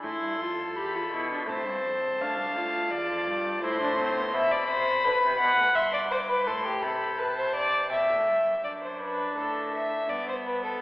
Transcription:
0.03 cello A2, viola E4, violin A4 C6
0.22 cello G2
0.39 cello F2, viola F4
0.75 cello E2, viola G4, violin B5
0.95 viola F4
1.11 cello B2, viola E4
1.31 viola D4
1.46 cello A2, viola C4, violin C5 A5
1.65 cello G2
1.83 cello F2
2.01 cello E2
2.19 cello D2, viola D4, violin F5
2.37 cello C2
2.54 cello D2, viola F4
2.90 cello E2, violin D5
3.08 cello F2
3.26 cello G2
3.62 cello A2, viola E4, violin C5 C6
3.81 viola D4
3.99 viola C4
4.17 viola B3
4.34 cello B2, violin E5 B5
4.51 violin D5
4.68 cello C3, violin C5
5.04 cello D3, violin B4
5.22 cello C3
5.39 cello B2, violin F#5
5.57 cello A2
5.75 cello G2, violin E5 C6
5.93 violin D5
6.11 violin C5 D6
6.29 violin B4
6.46 cello A2, violin A4 C6
6.66 violin G4
6.82 cello C3, violin A4 B5
7.18 violin B4 A5
7.38 violin C5
7.55 violin D5
7.90 cello B2, violin E5 G5
8.09 cello A2
8.28 cello G2
8.46 cello F#2
8.64 cello F#2, viola D4, violin D5
8.83 violin C5
9.02 violin B4
9.37 cello A2, violin A4
9.74 violin E5
10.09 cello G2, viola B3, violin D5
10.28 violin C5
10.46 violin B4
10.64 violin A4

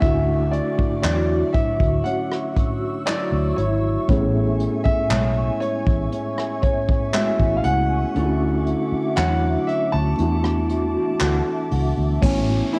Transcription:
Already playing: nylon-string guitar G#3 C#4 E4, ambient pad E5 C#6, downlifter
0.00 fingered electric bass D2, nylon-string guitar D3, tine electric piano A3 D4 E4, ambient pad F#4 D6, grand piano E5, kick, closed hi-hat
0.05 tine electric piano F#4
0.51 grand piano D5, closed hi-hat
0.79 muted fingered electric bass stroke, kick
1.02 fingered electric bass E2, nylon-string guitar F#3 E4, grand piano D5, clap, closed hi-hat
1.53 grand piano E5, kick, closed hi-hat
1.80 fingered electric bass D2, kick
2.04 nylon-string guitar C#4, grand piano F#5, ambient pad E6, closed hi-hat
2.31 cross-stick
2.56 kick, closed hi-hat
3.06 nylon-string guitar F#3 E4, grand piano D5, clap, closed hi-hat
3.32 fingered electric bass D2
3.56 fingered electric bass G#1, nylon-string guitar E4, grand piano C#5, closed hi-hat
4.08 fingered electric bass A1, nylon-string guitar A2, tine electric piano A3 B3 C#4 E4, ambient pad G#5, kick, closed hi-hat
4.12 tine electric piano G#4
4.60 closed hi-hat
4.84 grand piano E5, muted fingered electric bass stroke, kick
5.10 fingered electric bass B1, nylon-string guitar G#3 C#4 E4, clap, closed hi-hat
5.60 grand piano C#5, closed hi-hat
5.87 fingered electric bass A1, kick
6.12 nylon-string guitar C#4, closed hi-hat
6.38 cross-stick
6.62 grand piano C#5, kick, closed hi-hat
6.89 kick
7.13 nylon-string guitar G#3 C#4 E4, tine electric piano A3 B3 C#4 E4 F#4, grand piano E5, clap, closed hi-hat
7.40 fingered electric bass A1, kick
7.57 grand piano F5
7.64 fingered electric bass C#2, nylon-string guitar E4, grand piano F#5, closed hi-hat
8.14 fingered electric bass D2, nylon-string guitar D3, tine electric piano A3 C#4 D4 E4, ambient pad F#4 D6, closed hi-hat
8.19 tine electric piano F4
8.26 tine electric piano F#4
8.67 closed hi-hat
8.92 muted fingered electric bass stroke
9.16 fingered electric bass E2, nylon-string guitar F#3 C#4 E4, grand piano F#5, clap, closed hi-hat
9.67 grand piano E5, closed hi-hat
9.92 fingered electric bass D2, grand piano A5
10.17 fingered electric bass E2, nylon-string guitar E3, tine electric piano A3 B3 D4 E4, ambient pad A5 D6, closed hi-hat
10.22 tine electric piano F#4
10.44 cross-stick
10.70 closed hi-hat
11.20 fingered electric bass D2, nylon-string guitar A3 D4 F#4, clap, closed hi-hat
11.71 fingered electric bass C#2, nylon-string guitar F#4, open hi-hat
11.98 fingered electric bass D2
12.21 fingered electric bass A1, tine electric piano A3 B3 E4 C#5, ambient pad A3 E5 G#5 C#6, grand piano C#4, kick, crash, downlifter
12.26 tine electric piano G#5
12.73 grand piano E4, closed hi-hat

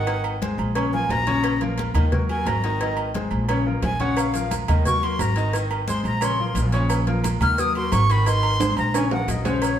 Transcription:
Already playing: upright bass G#1, flute F#5
0.07 grand piano D#3 D#4 D#5, cowbell, high conga, low agogo
0.24 high conga, low agogo
0.41 grand piano G#3 G#4 C5, cowbell, high conga
0.58 upright bass A#1, high conga, low agogo
0.75 grand piano C#3 C#4 C#5, cowbell, high conga, low agogo
0.93 grand piano F3 F4 A#4, flute G#5, high conga
1.09 upright bass A#1, flute A#5, cowbell, high conga, low timbale, low agogo
1.27 grand piano C#3 C#4 C#5, cowbell, high conga
1.44 cowbell, low agogo
1.61 grand piano F3 F4 A#4, cowbell, high conga
1.78 cowbell, high conga, low agogo
1.94 upright bass D#2, grand piano D#3 D#4 D#5, cowbell, high conga, low conga, low agogo
2.12 grand piano F#3 F#4 A#4, cowbell, high conga, low conga
2.29 grand piano F#3 F#4 A#4, flute G#5, high conga, low agogo
2.46 upright bass G#1, flute A#5, cowbell, high conga, low timbale, low agogo
2.64 grand piano D#3 D#4 D#5, cowbell
2.81 grand piano D#3 D#4 D#5, cowbell, high conga, low agogo
2.97 high conga, low agogo
3.14 grand piano G#3 G#4 C5, cowbell, high conga
3.31 upright bass A#1, high conga, low agogo
3.49 grand piano C#3 C#4 C#5, cowbell, high conga, low agogo
3.66 grand piano F3 F4 A#4, high conga
3.82 upright bass A#1, flute G#5, cowbell, high conga, low timbale, low agogo
4.00 grand piano C#3 C#4 C#5, flute F#5, cowbell, high conga
4.17 flute F5, cowbell, high conga, low agogo, maracas
4.34 grand piano F3 F4 A#4, cowbell, high conga, maracas
4.51 cowbell, high conga, low agogo, maracas
4.68 upright bass D#2, grand piano D#3 D#4 D#5, cowbell, high conga, low conga, low agogo, maracas
4.85 grand piano F#3 F#4 A#4, flute C#6, cowbell, high conga, low conga, maracas
5.03 grand piano F#3 F#4 A#4, flute C6, high conga, low agogo
5.19 upright bass G#1, flute A#5, cowbell, high conga, low timbale, low agogo, maracas
5.36 grand piano D#3 D#4 D#5, cowbell, maracas
5.53 grand piano D#3 D#4 D#5, cowbell, high conga, low agogo, maracas
5.71 high conga, low agogo
5.88 grand piano G#3 G#4 C5, flute C6, cowbell, high conga, maracas
6.04 upright bass A#1, flute A#5, high conga, low agogo, maracas
6.21 grand piano C#3 C#4 C#5, flute C6, cowbell, high conga, low agogo, maracas
6.39 grand piano F3 F4 A#4, high conga
6.55 upright bass A#1, cowbell, high conga, low agogo, maracas
6.72 grand piano C#3 C#4 C#5, cowbell, maracas
6.90 cowbell, high conga, low agogo, maracas
7.07 grand piano F3 F4 A#4, cowbell, high conga
7.24 cowbell, high conga, low agogo, maracas
7.40 upright bass D#2, grand piano D#3 D#4 D#5, flute F6, cowbell, high conga, low conga, low agogo, maracas
7.58 grand piano F#3 F#4 A#4, flute D#6, cowbell, high conga, maracas
7.75 grand piano F#3 F#4 A#4, flute C6, high conga, low agogo
7.92 upright bass G#1, flute C#6, cowbell, high conga, low timbale, low agogo, maracas
8.10 grand piano D#3 D#4 D#5, flute B5, cowbell, maracas
8.26 grand piano D#3 D#4 D#5, flute C6, cowbell, high conga, low agogo, maracas
8.43 high conga, low agogo
8.60 grand piano G#3 G#4 C5, cowbell, high conga, high timbale, maracas
8.77 upright bass A#1, flute A#5, high conga, high timbale, low agogo, maracas
8.94 grand piano C#3 C#4 C#5, flute G#5, cowbell, high conga, high timbale, low agogo, maracas
9.11 grand piano F3 F4 A#4, flute F#5, high conga, low timbale
9.28 upright bass A#1, flute D#5, cowbell, high conga, low timbale, low agogo, maracas
9.45 grand piano C#3 C#4 C#5, flute C5, cowbell, high conga, low timbale, maracas
9.62 flute C#5, cowbell, high conga, low agogo, maracas

